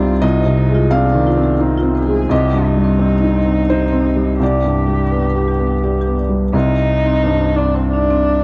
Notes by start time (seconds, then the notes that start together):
Already playing: C2 G2 C4 D#4 F4 C5 D5
0.00 G3
0.22 C2 D#4 F4 D#5
0.40 C5
0.45 C3
0.57 C5
0.70 G#3
0.75 F4
0.91 C4 D4 C5 F5
1.09 G#4
1.14 D#3
1.27 F4
1.37 C4
1.44 G#4
1.59 C4 D#4 C5
1.78 F4
1.83 C4
1.95 G#4 C5
2.06 G#3
2.29 C2 C4 G4 D#5
2.48 G4
2.53 G2
2.66 D#4 G4
2.76 G3
2.84 C4
2.99 C4 G4
3.18 D#4
3.23 D#4
3.36 C4
3.45 C4
3.53 D#4
3.70 D#4 G4 C5
3.88 C4
4.06 G4
4.16 G3
4.40 C2 G4 D5
4.59 D5
4.64 G2
4.77 D5
4.88 G3
4.94 G4
5.11 B3 D5
5.30 B4
5.36 G4
5.48 G4
5.59 B3
5.67 B4
5.83 G4 D5
6.01 G4
6.07 B3
6.19 D5
6.29 G3
6.53 C2 C4 D#4
6.89 D#4
7.06 C4
7.23 G2 C5
7.40 C5
7.56 C4 D4
7.75 C4 C5
7.92 D4 D#4
8.10 C4